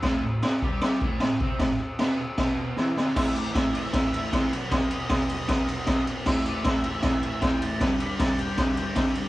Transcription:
<<
  \new Staff \with { instrumentName = "Lead electric guitar" } { \time 4/4 \key a \dorian \tempo 4 = 154 r1 | r1 | e''8 d''8 e''8 e''4. c'''8 b''8 | dis''4. dis''2 r8 |
e''8 d''8 e''8 e''4 e''8 g''8 a''8 | b''4 a''8 g''2 r8 | }
  \new Staff \with { instrumentName = "Distorted electric guitar" } { \clef bass \time 4/4 \key a \dorian <a, a>8 a,8 r8 <g g'>4 <a, a>8 a,8 <c c'>8 | a,8 r8 <b, b>8 r8 <b, b>4 <e e'>8 <d d'>8 | <a, e a>8 <e a>8 <a, e a>8 <a, e a>8 <a, e a>8 <e a>8 <a, e a>8 <b, fis b>8 | <b, fis b>8 <fis b>8 <b, fis b>8 <b, fis b>8 <b, fis b>8 <fis b>8 <b, fis b>8 <fis b>8 |
<a, e a>8 <e a>8 <a, e a>8 <a, e a>8 <a, e a>8 <e a>8 <a, e a>8 <e a>8 | <g, d g>8 <d g>8 <g, d g>8 <g, d g>8 <g, d g>8 <d g>8 <g, d g>8 <d g>8 | }
  \new DrumStaff \with { instrumentName = "Drums" } \drummode { \time 4/4 <cymc bd sn>4 <cymc sn>8 bd8 <cymc sn>8 bd8 <cymc sn>8 bd8 | <cymc bd sn>4 <cymc sn>4 <cymc bd sn>4 sn8 sn8 | <cymc bd sn>8 cymr8 <bd cymr sn>8 cymr8 <bd cymr sn>8 cymr8 <bd cymr sn>8 cymr8 | <bd cymr sn>8 cymr8 <bd cymr sn>8 cymr8 <bd cymr sn>8 cymr8 <bd cymr sn>8 cymr8 |
<cymc bd sn>8 cymr8 <bd cymr sn>8 cymr8 <bd cymr sn>8 cymr8 <bd cymr sn>8 cymr8 | <bd cymr sn>8 cymr8 <bd cymr sn>8 cymr8 <bd cymr sn>8 cymr8 <bd cymr sn>8 cymr8 | }
>>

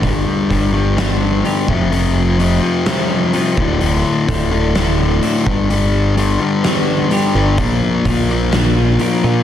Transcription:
<<
  \new Staff \with { instrumentName = "Clean electric guitar" } { \time 4/4 \key g \major \tempo 4 = 127 g,8 g8 d'8 g8 b8 d'8 g'8 f,8 | f,8 f8 c'8 f8 g8 c'8 f'8 d,8 | d,8 a,8 a8 a,8 d8 a8 fis'8 g,8 | g,8 g8 d'8 g8 b8 d'8 g'8 d'8 |
bes,8 bes8 f'8 bes8 d'8 f'8 bes'8 f'8 | }
  \new Staff \with { instrumentName = "Distorted electric guitar" } { \clef bass \time 4/4 \key g \major <g, d g>4 <g, d g>8 <g, d g>8 <g, d g>4 <g, d g>8 <f, c f>8 | <f, c f>4 <f, c f>8 <f, c f>8 <f, c f>4 <f, c f>8 <d, a, d>8 | <d, a, d>4 <d, a, d>8 <d, a, d>8 <d, a, d>4 <d, a, d>8 <g, d g>8 | <g, d g>4 <g, d g>8 <g, d g>8 <g, d g>4 <g, d g>8 <g, d g>8 |
<bes, f bes>4 <bes, f bes>8 <bes, f bes>8 <bes, f bes>4 <bes, f bes>8 <bes, f bes>8 | }
  \new Staff \with { instrumentName = "Picked electric bass" } { \clef bass \time 4/4 \key g \major g,,8 r8 g,,2 r8 f,,8~ | f,,4. r2 d,,8 | d,,8 r8 d,,2 r8 g,,8~ | g,,4. r2 g,,8 |
bes,,8 r8 bes,,2 r8 bes,8 | }
  \new DrumStaff \with { instrumentName = "Drums" } \drummode { \time 4/4 <hho bd>4 <hho bd>4 <hho sn>4 hho8 bd8 | hho4 hho4 <hho sn>4 hho8 bd8 | hho4 <hho bd>4 <hho sn>4 hho8 bd8 | hho4 hho4 <hho sn>4 hho4 |
<hho bd>4 <hho bd>4 <hho sn>4 hho4 | }
>>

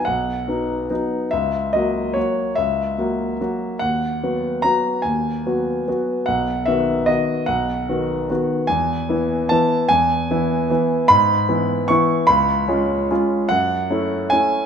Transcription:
<<
  \new Staff \with { instrumentName = "Grand piano" } { \time 3/4 \key b \major \tempo 4 = 148 fis''2. | e''4 dis''4 cis''4 | e''2. | fis''2 ais''4 |
gis''2. | fis''4 e''4 dis''4 | fis''2. | \key e \major gis''2 a''4 |
gis''2. | b''2 cis'''4 | b''2. | fis''2 gis''4 | }
  \new Staff \with { instrumentName = "Grand piano" } { \time 3/4 \key b \major b,,4 <fis b dis'>4 <fis b dis'>4 | cis,4 <fis ais fis'>4 <fis ais fis'>4 | cis,4 <fis ais fis'>4 <fis ais fis'>4 | dis,4 <fis b fis'>4 <fis b fis'>4 |
dis,4 <fis b fis'>4 <fis b fis'>4 | b,,4 <dis b fis'>4 <dis b fis'>4 | b,,4 <dis b fis'>4 <dis b fis'>4 | \key e \major e,4 <e b e'>4 <e b e'>4 |
e,4 <e b e'>4 <e b e'>4 | gis,4 <e b e'>4 <e b e'>4 | cis,4 <gis cis' eis'>4 <gis cis' eis'>4 | fis,4 <a cis' e'>4 <a cis' e'>4 | }
>>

